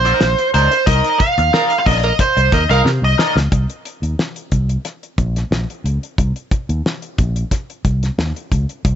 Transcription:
0.00 0.12 A#1 loud
0.00 0.50 C5 loud
0.05 0.20 D#4 medium
0.05 0.21 A#4 medium
0.05 0.22 D#5 medium
0.05 snare soft
0.05 closed hi-hat soft
0.21 0.34 A#1 loud
0.21 muted overdriven electric guitar stroke soft
0.21 snare loud
0.38 closed hi-hat soft
0.54 0.67 C#2 medium
0.54 0.67 D#4 medium
0.54 0.67 A#4 medium
0.54 0.88 C5 medium
0.54 0.68 D5 medium
0.54 closed hi-hat medium
0.71 muted overdriven electric guitar stroke soft
0.71 closed hi-hat medium
0.86 1.00 C2 loud
0.86 1.18 D#4 medium
0.86 1.18 A#4 medium
0.86 1.19 D#5 loud
0.86 kick loud
0.86 closed hi-hat loud
1.04 closed hi-hat soft
1.20 1.78 F5 loud
1.20 kick loud
1.20 closed hi-hat medium
1.38 1.49 D#2 medium
1.38 muted overdriven electric guitar stroke medium
1.38 closed hi-hat medium
1.53 1.70 D#4 loud
1.53 1.65 A#4 loud
1.53 1.70 A#4 medium
1.53 1.70 D5 medium
1.53 snare loud
1.70 muted overdriven electric guitar stroke medium
1.70 closed hi-hat medium
1.79 1.86 F5 medium
1.86 2.11 A#1 medium
1.86 1.99 D#4 medium
1.86 2.00 A#4 medium
1.86 2.00 D5 medium
1.86 2.21 D#5 medium
1.86 kick loud
1.86 open hi-hat medium
2.03 2.14 A#4 medium
2.03 muted overdriven electric guitar stroke soft
2.03 closed hi-hat medium
2.19 2.54 C5 medium
2.19 muted overdriven electric guitar stroke medium
2.19 kick medium
2.19 snare soft
2.19 closed hi-hat medium
2.37 2.48 C2 medium
2.37 muted overdriven electric guitar stroke soft
2.37 closed hi-hat soft
2.52 2.65 D#2 medium
2.52 2.64 A#4 medium
2.52 2.69 D#5 loud
2.52 kick loud
2.52 closed hi-hat medium
2.69 2.81 C2 loud
2.69 2.84 D#4 medium
2.69 2.85 A#4 medium
2.69 2.92 A#4 loud
2.69 2.84 D#5 medium
2.69 2.80 F5 loud
2.69 snare soft
2.69 closed hi-hat medium
2.85 2.98 C3 loud
2.85 muted overdriven electric guitar stroke soft
2.85 snare medium
3.02 3.14 C2 loud
3.02 3.35 D#5 medium
3.18 3.31 D#4 medium
3.18 3.32 A#4 medium
3.18 3.32 D5 medium
3.18 snare medium
3.36 3.47 C#2 medium
3.36 muted overdriven electric guitar stroke soft
3.36 snare medium
3.52 3.65 C2 medium
3.52 kick medium
3.52 closed hi-hat medium
3.70 closed hi-hat soft
3.85 closed hi-hat medium
4.02 4.14 D#2 medium
4.02 closed hi-hat soft
4.19 snare loud
4.36 closed hi-hat medium
4.52 4.76 C2 medium
4.52 kick medium
4.52 closed hi-hat medium
4.69 closed hi-hat soft
4.85 snare soft
4.85 closed hi-hat medium
5.03 closed hi-hat soft
5.18 5.42 A#1 medium
5.18 kick medium
5.18 closed hi-hat medium
5.36 snare soft
5.36 closed hi-hat soft
5.51 5.64 A#1 medium
5.51 snare loud
5.70 closed hi-hat soft
5.84 5.97 C#2 medium
5.84 closed hi-hat medium
6.03 closed hi-hat soft
6.18 6.31 C2 medium
6.18 kick loud
6.18 closed hi-hat medium
6.36 closed hi-hat soft
6.51 kick medium
6.51 closed hi-hat medium
6.69 6.80 D#2 medium
6.69 closed hi-hat soft
6.86 snare loud
7.02 closed hi-hat medium
7.18 7.43 A#1 medium
7.18 kick medium
7.18 closed hi-hat medium
7.36 closed hi-hat soft
7.51 kick medium
7.51 snare soft
7.51 closed hi-hat medium
7.70 closed hi-hat soft
7.85 8.09 C2 medium
7.85 kick medium
7.85 closed hi-hat medium
8.03 snare soft
8.03 closed hi-hat soft
8.18 8.31 D#2 medium
8.18 snare loud
8.36 closed hi-hat medium
8.52 8.65 C#2 medium
8.52 kick medium
8.52 closed hi-hat medium
8.69 closed hi-hat soft
8.85 8.95 C2 medium
8.85 kick loud
8.85 closed hi-hat medium

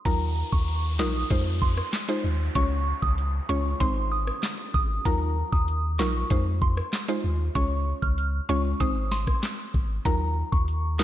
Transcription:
0.05 0.43 D#2 loud
0.05 0.92 F#3 loud
0.05 0.92 D#4 medium
0.05 0.92 F4 medium
0.05 0.92 A#4 loud
0.05 0.31 A#5 loud
0.05 kick loud
0.05 closed hi-hat loud
0.05 downlifter medium
0.52 1.01 D#2 medium
0.52 0.78 C#6 medium
0.52 kick loud
0.68 closed hi-hat medium
0.99 1.24 A#1 loud
0.99 1.28 F#3 medium
0.99 1.28 D#4 medium
0.99 1.28 F4 medium
0.99 1.28 A#4 medium
0.99 1.24 D#6 medium
0.99 snare loud
0.99 clap medium
1.30 1.81 F2 loud
1.30 2.02 G#3 medium
1.30 2.02 D#4 medium
1.30 2.02 F4 medium
1.30 2.03 C5 loud
1.30 kick medium
1.30 closed hi-hat medium
1.62 1.74 C6 medium
1.62 kick loud
1.77 cross-stick medium
1.93 snare loud
1.93 clap medium
1.93 closed hi-hat medium
2.08 2.24 G#3 medium
2.08 2.25 D#4 medium
2.08 2.25 F4 medium
2.08 2.25 C5 medium
2.24 2.49 D#2 loud
2.55 2.93 C#2 loud
2.55 3.42 G#3 loud
2.55 3.42 C#4 medium
2.55 3.42 F4 medium
2.55 3.42 C#5 loud
2.55 2.68 C#6 loud
2.55 kick loud
2.55 closed hi-hat medium
3.02 3.40 C#2 loud
3.02 3.15 D#6 medium
3.02 kick medium
3.18 closed hi-hat medium
3.49 3.74 C#2 loud
3.49 3.78 G#3 medium
3.49 3.78 C#4 medium
3.49 3.78 F4 medium
3.49 3.78 C#5 medium
3.49 3.62 C#6 medium
3.80 4.31 G#1 loud
3.80 4.95 G#3 medium
3.80 4.95 C4 medium
3.80 4.96 D#4 medium
3.80 4.96 C5 loud
3.80 3.93 C6 medium
3.80 kick medium
3.80 closed hi-hat medium
4.12 4.24 D#6 medium
4.27 cross-stick medium
4.43 snare loud
4.43 clap medium
4.43 closed hi-hat medium
4.74 4.99 G#1 medium
4.74 4.87 D#6 medium
4.74 kick medium
5.05 5.43 D#2 loud
5.05 5.92 F#3 loud
5.05 5.92 D#4 medium
5.05 5.92 F4 medium
5.05 5.92 A#4 loud
5.05 5.31 A#5 loud
5.05 kick loud
5.05 closed hi-hat loud
5.52 6.01 D#2 medium
5.52 5.77 D#6 medium
5.52 kick loud
5.68 closed hi-hat medium
5.99 6.24 A#1 loud
5.99 6.28 F#3 medium
5.99 6.28 D#4 medium
5.99 6.28 F4 medium
5.99 6.28 A#4 medium
5.99 6.24 C#6 medium
5.99 snare loud
5.99 clap loud
6.30 6.81 F2 loud
6.30 7.02 G#3 medium
6.30 7.02 D#4 medium
6.30 7.02 F4 medium
6.30 7.03 C5 loud
6.30 kick loud
6.30 closed hi-hat medium
6.62 6.74 C6 medium
6.62 kick loud
6.77 cross-stick medium
6.93 snare loud
6.93 clap medium
6.93 closed hi-hat medium
7.08 7.24 G#3 medium
7.08 7.25 D#4 medium
7.08 7.25 F4 medium
7.08 7.25 C5 medium
7.24 7.49 D#2 loud
7.55 7.93 C#2 loud
7.55 8.42 G#3 loud
7.55 8.42 C#4 medium
7.55 8.42 F4 medium
7.55 8.42 C#5 loud
7.55 7.68 C#6 loud
7.55 kick loud
7.55 closed hi-hat loud
8.02 8.40 C#2 loud
8.02 8.15 F6 medium
8.02 kick medium
8.18 closed hi-hat medium
8.49 8.74 C#2 loud
8.49 8.78 G#3 medium
8.49 8.78 C#4 medium
8.49 8.78 F4 medium
8.49 8.78 C#5 medium
8.49 8.62 C#6 medium
8.80 9.31 G#1 loud
8.80 9.95 G#3 medium
8.80 9.95 C4 medium
8.80 9.96 D#4 medium
8.80 9.96 C5 loud
8.80 8.93 D#6 medium
8.80 kick loud
8.80 closed hi-hat medium
9.12 9.24 C6 medium
9.12 snare medium
9.27 kick medium
9.27 cross-stick medium
9.43 snare loud
9.43 clap medium
9.43 closed hi-hat medium
9.74 9.99 G#1 medium
9.74 kick medium
10.05 10.43 D#2 loud
10.05 10.92 F#3 loud
10.05 10.92 D#4 medium
10.05 10.92 F4 medium
10.05 10.92 A#4 loud
10.05 10.31 A#5 loud
10.05 kick loud
10.05 closed hi-hat medium
10.52 11.01 D#2 medium
10.52 10.77 C#6 medium
10.52 kick loud
10.68 closed hi-hat medium
10.99 11.04 A#1 loud
10.99 11.04 F#3 medium
10.99 11.04 D#4 medium
10.99 11.04 F4 medium
10.99 11.04 A#4 medium
10.99 11.04 D#6 medium
10.99 snare loud
10.99 clap loud

